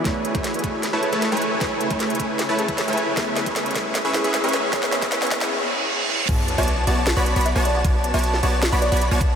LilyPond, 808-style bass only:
\new Staff \with { instrumentName = "808-style bass" } { \clef bass \time 4/4 \key b \dorian \tempo 4 = 154 r8. a,,8. a,,8. a,,8 a,,8 a,,8. | a,,8. a,,8. a,,8. a,,8 a,,8 a,,8. | r8. cis,8. cis,8. cis,8 cis,8 cis,8. | cis,8. cis,8. cis,8 r2 |
b,,8. b,,8. b,,8. b,,8 b,,8 b,,8. | b,,8. b,,8. b,,8. b,,8 b,,8 b,,8. | }